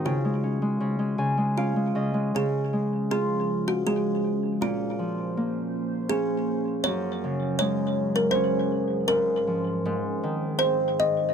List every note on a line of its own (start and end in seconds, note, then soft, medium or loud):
0.00 0.11 G#2 medium
0.00 0.11 D#3 medium
0.00 0.11 C4 medium
0.00 2.57 D#4 soft
0.00 0.74 F4 soft
0.00 0.67 G#4 soft
0.05 0.79 C#3 medium
0.05 1.56 F4 medium
0.25 0.61 G#3 soft
0.43 1.57 C#4 soft
0.62 0.98 G#3 soft
0.80 1.17 C#3 soft
0.99 1.36 G#3 soft
1.18 1.94 C#3 medium
1.18 2.68 G#5 medium
1.37 1.75 G#3 soft
1.57 4.47 C#4 soft
1.57 2.36 F4 medium
1.57 3.24 F5 medium
1.76 2.13 G#3 soft
1.95 2.33 C#3 medium
1.95 3.74 D#5 medium
2.14 2.39 G#3 soft
2.34 4.66 C#3 medium
2.34 4.59 F3 medium
2.34 9.81 C#4 medium
2.34 4.59 G#4 medium
2.34 3.07 G#4 medium
2.73 3.85 G#3 soft
3.11 5.63 F4 medium
3.11 3.69 G#4 medium
3.68 3.85 F#4 medium
3.86 4.66 G#3 soft
3.86 4.64 G#4 medium
4.61 6.90 A#2 medium
4.61 6.84 A#3 medium
4.61 6.15 F4 medium
4.61 6.84 C5 medium
4.99 6.90 F3 soft
5.37 8.59 A#3 soft
6.09 8.34 C#4 soft
6.09 6.80 G#4 medium
6.84 9.14 F#2 medium
6.84 9.08 F#3 medium
6.84 9.82 G#4 medium
6.84 7.58 C#5 medium
7.24 9.14 C#3 soft
7.59 9.14 G#3 medium
7.59 8.11 C#5 medium
8.16 8.35 A#4 medium
8.31 10.69 C#4 medium
8.31 9.04 C5 medium
9.08 9.84 G#2 medium
9.08 9.84 G#2 soft
9.08 9.84 F3 medium
9.08 10.65 A#4 medium
9.47 9.90 F3 soft
9.85 11.34 G#2 medium
9.85 11.34 D#3 medium
9.85 11.34 C4 medium
9.85 11.34 G#4 medium
10.23 11.34 D#3 medium
10.59 10.96 C5 medium
10.63 11.34 C4 soft
11.00 11.34 D#5 medium